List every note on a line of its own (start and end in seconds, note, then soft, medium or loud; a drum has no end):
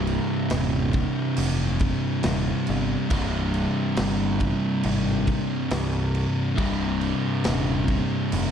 0.00 0.18 C1 loud
0.00 0.95 C2 medium
0.00 0.92 G2 loud
0.00 0.91 C3 loud
0.07 crash medium
0.50 1.04 D#1 loud
0.50 snare loud
0.50 crash medium
0.92 2.22 G2 medium
0.92 2.26 C3 medium
0.92 kick medium
0.92 crash medium
0.96 2.22 C2 medium
1.37 1.91 F1 loud
1.37 crash loud
1.79 kick loud
1.79 crash medium
2.22 2.51 D#1 medium
2.22 3.07 C2 medium
2.22 3.08 G2 medium
2.22 3.12 C3 medium
2.22 snare loud
2.22 crash medium
2.67 2.95 G1 loud
2.67 crash medium
3.08 3.65 C1 loud
3.08 4.42 C2 medium
3.08 4.38 G2 loud
3.08 kick loud
3.08 crash medium
3.12 4.39 C3 loud
3.54 crash medium
3.96 4.52 G1 loud
3.96 snare loud
3.96 crash medium
4.39 5.69 C2 medium
4.39 5.69 G2 medium
4.39 5.72 C3 medium
4.39 kick loud
4.39 crash medium
4.83 5.38 G#1 loud
4.83 crash loud
5.07 snare soft
5.27 kick medium
5.27 crash medium
5.70 6.55 C2 medium
5.70 6.25 C2 medium
5.70 6.55 G2 medium
5.70 6.59 C3 loud
5.70 snare loud
5.70 crash medium
6.15 crash medium
6.56 7.12 C1 loud
6.56 7.89 C2 loud
6.56 7.86 G2 loud
6.56 7.85 C3 medium
6.56 kick loud
6.56 crash medium
7.01 crash medium
7.44 7.99 D#1 loud
7.44 snare loud
7.44 crash medium
7.86 8.51 C2 medium
7.86 8.51 G2 medium
7.86 8.51 C3 medium
7.86 kick medium
7.86 crash medium
8.32 8.51 F1 loud
8.32 crash loud